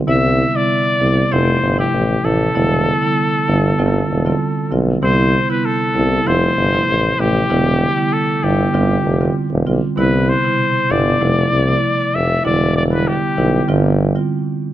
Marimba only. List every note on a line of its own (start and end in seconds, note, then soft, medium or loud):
0.07 0.26 C3 medium
0.07 0.26 G3 medium
0.07 0.26 B3 medium
0.07 0.26 E4 loud
0.54 0.72 C3 medium
0.54 0.72 G3 medium
0.54 0.72 B3 medium
0.54 0.72 E4 medium
1.00 1.19 C3 medium
1.00 1.19 G3 medium
1.00 1.19 B3 medium
1.00 1.19 E4 medium
1.31 1.74 C3 medium
1.31 1.75 F3 medium
1.31 1.75 A3 medium
1.31 1.75 E4 loud
1.78 1.95 C3 medium
1.78 1.96 F3 medium
1.78 1.96 A3 medium
1.78 1.96 E4 medium
2.24 2.42 C3 medium
2.24 2.42 F3 medium
2.24 2.43 A3 medium
2.24 2.43 E4 medium
2.55 2.73 D3 loud
2.55 2.73 G3 medium
2.55 2.73 B3 medium
2.55 2.74 E4 loud
3.02 3.19 D3 medium
3.02 3.19 G3 medium
3.02 3.19 B3 medium
3.02 3.19 E4 medium
3.48 3.66 D3 medium
3.48 3.66 G3 medium
3.48 3.66 B3 medium
3.48 3.66 E4 medium
3.78 4.22 D3 medium
3.78 4.22 G3 medium
3.78 4.22 C4 medium
3.78 4.22 F4 medium
4.26 4.43 D3 medium
4.26 4.43 G3 medium
4.26 4.43 C4 medium
4.26 4.43 F4 medium
4.71 4.90 D3 medium
4.71 4.90 G3 medium
4.71 4.90 C4 medium
4.71 4.90 F4 medium
5.02 5.21 C3 loud
5.02 5.21 G3 medium
5.02 5.21 B3 medium
5.02 5.21 E4 loud
5.49 5.67 C3 medium
5.49 5.67 G3 medium
5.49 5.67 B3 medium
5.49 5.67 E4 medium
5.95 6.13 C3 medium
5.95 6.14 G3 medium
5.95 6.14 B3 medium
5.95 6.14 E4 medium
6.26 6.69 C3 medium
6.26 6.69 F3 medium
6.26 6.69 A3 medium
6.26 6.70 E4 loud
6.73 6.90 C3 medium
6.73 6.90 F3 medium
6.73 6.91 A3 medium
6.73 6.91 E4 medium
7.19 7.37 C3 medium
7.19 7.37 F3 medium
7.19 7.37 A3 medium
7.19 7.37 E4 medium
7.50 7.68 D3 loud
7.50 7.68 G3 medium
7.50 7.68 B3 medium
7.50 7.68 E4 loud
7.97 8.14 D3 medium
7.97 8.14 G3 medium
7.97 8.14 B3 medium
7.97 8.14 E4 medium
8.42 8.61 D3 medium
8.42 8.61 G3 medium
8.42 8.61 B3 medium
8.42 8.61 E4 medium
8.74 9.17 D3 medium
8.74 9.17 G3 medium
8.74 9.17 C4 medium
8.74 9.17 F4 loud
9.20 9.38 D3 medium
9.20 9.38 G3 medium
9.20 9.38 C4 medium
9.20 9.38 F4 medium
9.66 9.85 D3 medium
9.66 9.85 G3 medium
9.66 9.85 C4 medium
9.66 9.85 F4 medium
9.97 10.40 C3 loud
9.97 10.40 G3 medium
9.97 10.41 B3 medium
9.97 10.41 E4 loud
10.44 10.87 B2 medium
10.44 10.86 C3 medium
10.44 10.87 G3 medium
10.44 10.87 E4 medium
10.90 11.19 C3 medium
10.90 11.19 G3 medium
10.90 11.19 B3 medium
10.90 11.19 E4 medium
11.21 11.39 C3 medium
11.21 11.39 F3 medium
11.21 11.39 A3 medium
11.21 11.39 E4 loud
11.68 11.85 C3 medium
11.68 11.85 F3 medium
11.68 11.85 A3 medium
11.68 11.85 E4 medium
12.44 12.88 D3 medium
12.44 12.88 G3 medium
12.44 12.88 B3 medium
12.44 12.88 E4 loud
12.91 13.34 D3 medium
12.91 13.34 G3 medium
12.91 13.34 B3 medium
12.91 13.34 E4 medium
13.37 13.66 D3 medium
13.37 13.66 G3 medium
13.37 13.66 B3 medium
13.37 13.66 E4 medium
13.68 13.87 D3 medium
13.68 13.87 G3 medium
13.68 13.87 C4 medium
13.68 13.87 F4 loud
14.15 14.33 D3 medium
14.15 14.33 G3 medium
14.15 14.33 C4 medium
14.15 14.33 F4 medium